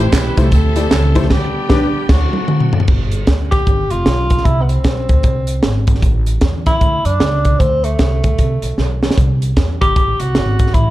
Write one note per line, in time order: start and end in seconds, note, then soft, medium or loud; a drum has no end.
0.00 0.33 A2 medium
0.00 1.27 E3 medium
0.00 1.27 A3 medium
0.00 1.27 C4 medium
0.00 0.48 E4 medium
0.00 0.48 G4 medium
0.00 1.27 G4 medium
0.06 0.12 C5 medium
0.12 0.33 B1 medium
0.12 0.37 B4 medium
0.12 kick medium
0.12 snare loud
0.12 clap loud
0.12 closed hi-hat medium
0.12 tambourine medium
0.37 0.50 C2 loud
0.37 0.45 A3 medium
0.37 0.45 E4 medium
0.37 0.45 G4 medium
0.37 0.51 A4 medium
0.37 0.45 C5 medium
0.37 kick medium
0.37 snare soft
0.37 closed hi-hat medium
0.37 tambourine medium
0.52 0.85 D2 loud
0.52 1.27 C4 medium
0.52 1.27 E4 medium
0.52 1.27 A4 medium
0.52 kick loud
0.52 closed hi-hat medium
0.52 tambourine medium
0.76 0.84 A3 medium
0.76 0.84 E4 medium
0.76 0.84 G4 medium
0.76 0.84 D5 medium
0.76 closed hi-hat medium
0.76 tambourine medium
0.91 1.25 C#2 medium
0.91 snare loud
0.91 clap medium
0.91 closed hi-hat medium
0.91 tambourine medium
1.15 1.23 A3 medium
1.15 1.23 E4 medium
1.15 1.24 G4 medium
1.15 1.24 C5 loud
1.15 kick medium
1.15 closed hi-hat medium
1.15 tambourine soft
1.23 snare soft
1.30 1.47 D2 loud
1.30 2.07 D3 medium
1.30 2.08 G3 medium
1.30 2.07 B3 medium
1.30 2.06 B3 medium
1.30 2.06 D4 medium
1.30 2.07 G4 medium
1.30 2.10 G4 medium
1.30 kick loud
1.30 snare loud
1.30 crash medium
1.69 1.87 D2 loud
1.69 1.86 B3 medium
1.69 1.86 D4 loud
1.69 1.86 G4 loud
1.69 1.87 D5 medium
1.69 kick loud
1.69 snare loud
2.08 2.26 D2 loud
2.08 2.86 D3 medium
2.08 2.86 F#3 medium
2.08 2.85 A3 medium
2.08 2.86 C4 medium
2.08 2.84 C4 medium
2.08 2.86 E4 medium
2.08 2.73 F#4 medium
2.08 kick loud
2.08 snare loud
2.08 crash medium
2.33 high tom medium
2.48 mid tom medium
2.60 mid tom medium
2.73 floor tom loud
2.80 floor tom medium
2.87 3.21 G1 loud
2.87 kick loud
2.87 crash medium
3.12 closed hi-hat medium
3.27 3.61 D2 medium
3.27 kick medium
3.27 snare loud
3.27 closed hi-hat medium
3.51 3.93 G4 medium
3.51 kick medium
3.51 snare soft
3.51 closed hi-hat medium
3.67 3.88 G1 medium
3.67 kick loud
3.67 closed hi-hat medium
3.90 4.04 F1 medium
3.90 4.46 F4 loud
3.90 closed hi-hat medium
4.06 4.40 B1 medium
4.06 snare loud
4.06 closed hi-hat medium
4.30 kick medium
4.30 closed hi-hat medium
4.38 snare soft
4.45 4.79 C2 loud
4.45 4.63 E4 loud
4.45 kick loud
4.45 closed hi-hat medium
4.62 4.71 B3 medium
4.69 5.88 C4 medium
4.69 closed hi-hat medium
4.84 5.05 B1 medium
4.84 kick medium
4.84 snare loud
4.84 closed hi-hat medium
5.09 5.22 D2 medium
5.09 kick loud
5.09 closed hi-hat medium
5.23 5.57 C2 medium
5.23 kick loud
5.23 closed hi-hat medium
5.47 closed hi-hat medium
5.63 5.97 G#1 medium
5.63 snare loud
5.63 closed hi-hat medium
5.87 kick medium
5.87 closed hi-hat medium
5.95 snare soft
6.02 6.36 A1 loud
6.02 kick loud
6.02 closed hi-hat medium
6.26 closed hi-hat medium
6.41 6.75 E2 medium
6.41 kick medium
6.41 snare loud
6.41 closed hi-hat medium
6.66 7.07 E4 loud
6.66 kick medium
6.66 snare soft
6.66 closed hi-hat medium
6.81 7.02 D2 medium
6.81 kick medium
6.81 closed hi-hat medium
7.05 7.18 F#2 medium
7.05 7.61 D4 loud
7.05 closed hi-hat medium
7.20 7.54 C#2 medium
7.20 snare loud
7.20 closed hi-hat medium
7.45 kick medium
7.45 closed hi-hat medium
7.59 7.93 D2 loud
7.59 7.86 C4 medium
7.59 kick medium
7.59 closed hi-hat medium
7.84 9.02 A3 medium
7.84 closed hi-hat medium
7.99 8.20 C2 medium
7.99 kick medium
7.99 snare loud
7.99 closed hi-hat medium
8.24 8.36 D2 medium
8.24 kick medium
8.24 closed hi-hat medium
8.39 8.60 C2 medium
8.39 kick medium
8.39 closed hi-hat medium
8.62 8.75 B1 medium
8.62 closed hi-hat medium
8.78 9.11 B1 medium
8.78 snare medium
9.03 snare medium
9.11 snare medium
9.18 9.51 C2 loud
9.18 kick loud
9.18 closed hi-hat medium
9.42 closed hi-hat medium
9.57 9.77 E2 medium
9.57 kick medium
9.57 snare medium
9.57 closed hi-hat medium
9.81 9.94 G1 medium
9.81 10.22 G4 loud
9.81 kick medium
9.81 closed hi-hat medium
9.96 10.17 A1 medium
9.96 kick loud
9.96 closed hi-hat medium
10.20 10.36 C2 medium
10.20 10.76 F#4 loud
10.20 closed hi-hat medium
10.35 10.68 G#1 medium
10.35 snare loud
10.35 closed hi-hat medium
10.59 kick medium
10.59 closed hi-hat medium
10.67 snare soft
10.74 10.90 A1 loud
10.74 10.90 E4 loud
10.74 kick loud
10.74 closed hi-hat medium